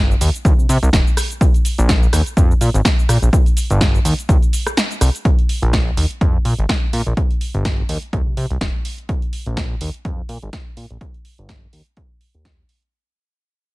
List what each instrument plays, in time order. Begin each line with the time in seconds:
Already playing: analog synth bass G1
0.11 cabasa
0.21 analog synth bass D#2, open hi-hat, cabasa
0.34 closed hi-hat, cabasa
0.45 analog synth bass D#2, kick, closed hi-hat, cabasa
0.59 analog synth bass C3, cabasa
0.69 analog synth bass C3, open hi-hat, cabasa
0.83 analog synth bass C2, closed hi-hat, cabasa
0.93 analog synth bass D#1, kick, snare, closed hi-hat, cabasa
1.07 cabasa
1.17 cross-stick, open hi-hat, cabasa
1.30 closed hi-hat, cabasa
1.41 kick, closed hi-hat, cabasa
1.54 closed hi-hat, cabasa
1.65 open hi-hat, cabasa
1.78 analog synth bass A#1, closed hi-hat, cabasa
1.89 kick, snare, closed hi-hat, cabasa
2.03 cabasa
2.13 analog synth bass D#2, cross-stick, open hi-hat, cabasa
2.26 closed hi-hat, cabasa
2.37 analog synth bass F2, kick, closed hi-hat, cabasa
2.51 cabasa
2.61 analog synth bass A#2, open hi-hat, cabasa
2.74 analog synth bass G#1, closed hi-hat, cabasa
2.85 kick, snare, closed hi-hat, cabasa
2.99 cabasa
3.09 analog synth bass A#2, cross-stick, open hi-hat, cabasa
3.22 analog synth bass A#1, closed hi-hat, cabasa
3.33 kick, closed hi-hat, cabasa
3.46 closed hi-hat, cabasa
3.57 open hi-hat, cabasa
3.70 analog synth bass G1, closed hi-hat, cabasa
3.81 kick, snare, closed hi-hat, cabasa
3.94 closed hi-hat, cabasa
4.05 analog synth bass D#2, open hi-hat, cabasa
4.19 closed hi-hat, cabasa
4.29 analog synth bass D#2, kick, closed hi-hat, cabasa
4.42 closed hi-hat, cabasa
4.53 open hi-hat, cabasa
4.67 cross-stick, closed hi-hat, cabasa
4.77 snare, closed hi-hat, cabasa
4.91 closed hi-hat, cabasa
5.01 analog synth bass C2, cross-stick, open hi-hat, cabasa
5.15 closed hi-hat, cabasa
5.25 kick, closed hi-hat
5.39 closed hi-hat
5.49 open hi-hat
5.62 analog synth bass A#1, closed hi-hat
5.73 kick, snare, closed hi-hat
5.97 analog synth bass D#2, open hi-hat
6.11 closed hi-hat
6.21 analog synth bass F2, kick, closed hi-hat
6.45 analog synth bass A#2, open hi-hat
6.59 analog synth bass G#1, closed hi-hat
6.69 kick, snare, closed hi-hat
6.93 analog synth bass A#2, open hi-hat
7.07 analog synth bass A#1
7.17 kick, closed hi-hat
7.31 closed hi-hat
7.41 open hi-hat
7.54 analog synth bass G1, closed hi-hat
7.65 kick, snare, closed hi-hat
7.89 analog synth bass D#2, open hi-hat
8.02 closed hi-hat
8.13 analog synth bass D#2, kick, closed hi-hat
8.27 analog synth bass C3
8.37 analog synth bass C3, open hi-hat
8.50 analog synth bass C2, closed hi-hat
8.61 analog synth bass D#1, kick, snare, closed hi-hat
8.85 open hi-hat
8.98 closed hi-hat
9.09 kick, closed hi-hat
9.22 closed hi-hat
9.33 open hi-hat
9.46 analog synth bass A#1, closed hi-hat
9.57 kick, snare, closed hi-hat
9.81 analog synth bass D#2, open hi-hat
10.05 analog synth bass F2, kick, closed hi-hat
10.29 analog synth bass A#2, open hi-hat
10.42 analog synth bass G#1, closed hi-hat
10.53 kick, snare, closed hi-hat
10.77 analog synth bass A#2, open hi-hat
10.90 analog synth bass A#1, closed hi-hat
11.01 kick, closed hi-hat
11.14 closed hi-hat
11.25 open hi-hat
11.38 analog synth bass G1, closed hi-hat
11.49 kick, snare, closed hi-hat
11.73 analog synth bass D#2, open hi-hat
11.97 kick, closed hi-hat
12.21 open hi-hat
12.34 analog synth bass D#2, closed hi-hat
12.45 kick, snare, closed hi-hat
12.69 open hi-hat
12.82 closed hi-hat